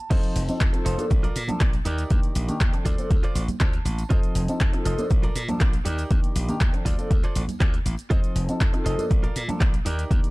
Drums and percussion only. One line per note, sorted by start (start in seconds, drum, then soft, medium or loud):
0.10 kick loud
0.10 closed hi-hat medium
0.10 crash loud
0.10 tambourine medium
0.10 shaker soft
0.23 closed hi-hat soft
0.23 tambourine soft
0.23 shaker soft
0.36 open hi-hat loud
0.36 shaker medium
0.48 closed hi-hat soft
0.48 tambourine medium
0.48 shaker soft
0.61 kick loud
0.61 clap loud
0.61 closed hi-hat medium
0.61 shaker soft
0.73 closed hi-hat soft
0.73 tambourine soft
0.73 shaker soft
0.86 open hi-hat loud
0.86 shaker medium
0.98 closed hi-hat soft
0.98 tambourine medium
0.98 high conga loud
0.98 shaker soft
1.10 kick loud
1.10 closed hi-hat medium
1.10 tambourine medium
1.10 low conga medium
1.10 shaker soft
1.23 closed hi-hat soft
1.23 tambourine soft
1.23 shaker soft
1.36 open hi-hat loud
1.36 shaker medium
1.48 closed hi-hat soft
1.48 tambourine medium
1.48 high conga medium
1.48 low conga loud
1.48 shaker soft
1.61 kick loud
1.61 clap loud
1.61 closed hi-hat medium
1.61 shaker soft
1.73 closed hi-hat soft
1.73 tambourine soft
1.73 shaker soft
1.85 open hi-hat loud
1.85 shaker medium
1.98 closed hi-hat soft
1.98 tambourine medium
1.98 shaker soft
2.10 kick loud
2.10 closed hi-hat medium
2.10 tambourine medium
2.10 shaker soft
2.23 closed hi-hat soft
2.23 tambourine soft
2.23 shaker soft
2.35 open hi-hat loud
2.35 shaker medium
2.48 closed hi-hat soft
2.48 tambourine medium
2.48 shaker soft
2.61 kick loud
2.61 clap loud
2.61 closed hi-hat medium
2.61 shaker soft
2.73 closed hi-hat soft
2.73 tambourine soft
2.73 shaker soft
2.86 kick medium
2.86 open hi-hat loud
2.86 shaker medium
2.98 closed hi-hat soft
2.98 tambourine medium
2.98 high conga medium
2.98 shaker soft
3.10 kick loud
3.10 closed hi-hat medium
3.10 tambourine medium
3.10 low conga medium
3.10 shaker soft
3.23 clap soft
3.23 closed hi-hat soft
3.23 tambourine soft
3.23 shaker soft
3.35 open hi-hat loud
3.35 shaker medium
3.48 closed hi-hat soft
3.48 tambourine medium
3.48 high conga loud
3.48 low conga loud
3.48 shaker soft
3.60 kick loud
3.60 clap loud
3.60 closed hi-hat medium
3.60 shaker soft
3.73 closed hi-hat soft
3.73 tambourine soft
3.73 shaker soft
3.85 open hi-hat loud
3.85 high conga medium
3.85 shaker medium
3.98 closed hi-hat soft
3.98 tambourine medium
3.98 shaker soft
4.10 kick loud
4.10 closed hi-hat medium
4.10 shaker soft
4.23 closed hi-hat soft
4.23 tambourine soft
4.23 shaker soft
4.35 open hi-hat loud
4.35 shaker medium
4.48 closed hi-hat soft
4.48 tambourine medium
4.48 shaker soft
4.60 kick loud
4.60 clap loud
4.60 closed hi-hat medium
4.60 shaker soft
4.73 closed hi-hat soft
4.73 tambourine soft
4.73 shaker soft
4.85 open hi-hat loud
4.85 shaker medium
4.98 closed hi-hat soft
4.98 tambourine medium
4.98 high conga loud
4.98 shaker soft
5.10 kick loud
5.10 closed hi-hat medium
5.10 tambourine medium
5.10 low conga medium
5.10 shaker soft
5.23 closed hi-hat soft
5.23 tambourine soft
5.23 shaker soft
5.36 open hi-hat loud
5.36 shaker medium
5.48 closed hi-hat soft
5.48 tambourine medium
5.48 high conga loud
5.48 low conga loud
5.48 shaker soft
5.60 kick loud
5.60 clap loud
5.60 closed hi-hat medium
5.60 tambourine medium
5.60 shaker soft
5.73 closed hi-hat soft
5.73 tambourine soft
5.73 shaker soft
5.86 open hi-hat loud
5.86 shaker medium
5.98 closed hi-hat soft
5.98 tambourine medium
5.98 shaker soft
6.11 kick loud
6.11 closed hi-hat medium
6.11 tambourine medium
6.11 shaker soft
6.23 closed hi-hat soft
6.23 tambourine soft
6.23 shaker soft
6.36 open hi-hat loud
6.36 shaker medium
6.49 closed hi-hat soft
6.49 tambourine medium
6.49 shaker soft
6.61 kick loud
6.61 clap loud
6.61 closed hi-hat medium
6.61 shaker soft
6.73 closed hi-hat soft
6.73 tambourine soft
6.73 shaker soft
6.86 kick medium
6.86 open hi-hat loud
6.86 shaker medium
6.98 closed hi-hat soft
6.98 tambourine medium
6.98 high conga medium
6.98 shaker soft
7.10 kick loud
7.10 closed hi-hat medium
7.10 tambourine medium
7.10 low conga medium
7.10 shaker soft
7.24 clap soft
7.24 closed hi-hat soft
7.24 tambourine soft
7.24 shaker soft
7.36 open hi-hat loud
7.36 shaker medium
7.48 closed hi-hat soft
7.48 tambourine medium
7.48 high conga loud
7.48 low conga medium
7.48 shaker soft
7.61 kick loud
7.61 clap loud
7.61 closed hi-hat medium
7.61 shaker soft
7.74 closed hi-hat soft
7.74 tambourine soft
7.74 shaker soft
7.86 open hi-hat loud
7.86 high conga medium
7.86 shaker medium
7.97 closed hi-hat soft
7.97 tambourine medium
7.97 shaker soft
8.10 kick loud
8.10 closed hi-hat medium
8.10 tambourine medium
8.10 shaker soft
8.24 closed hi-hat soft
8.24 tambourine soft
8.24 shaker soft
8.36 open hi-hat loud
8.36 shaker medium
8.48 closed hi-hat soft
8.48 tambourine medium
8.48 shaker soft
8.61 kick loud
8.61 clap loud
8.61 closed hi-hat medium
8.61 shaker soft
8.73 closed hi-hat soft
8.73 tambourine soft
8.73 shaker soft
8.86 open hi-hat loud
8.86 shaker medium
8.98 closed hi-hat soft
8.98 tambourine medium
8.98 high conga loud
8.98 shaker soft
9.10 kick loud
9.10 closed hi-hat medium
9.10 tambourine medium
9.10 low conga medium
9.10 shaker soft
9.23 closed hi-hat soft
9.23 tambourine soft
9.23 shaker soft
9.36 open hi-hat loud
9.36 shaker medium
9.48 closed hi-hat soft
9.48 tambourine medium
9.48 high conga medium
9.48 low conga medium
9.48 shaker soft
9.61 kick loud
9.61 clap loud
9.61 closed hi-hat medium
9.61 shaker soft
9.74 closed hi-hat soft
9.74 tambourine soft
9.74 shaker soft
9.86 open hi-hat loud
9.86 shaker medium
9.99 closed hi-hat soft
9.99 tambourine medium
9.99 shaker soft
10.11 kick loud
10.11 closed hi-hat medium
10.11 tambourine medium
10.11 shaker soft
10.24 closed hi-hat soft
10.24 tambourine soft
10.24 shaker soft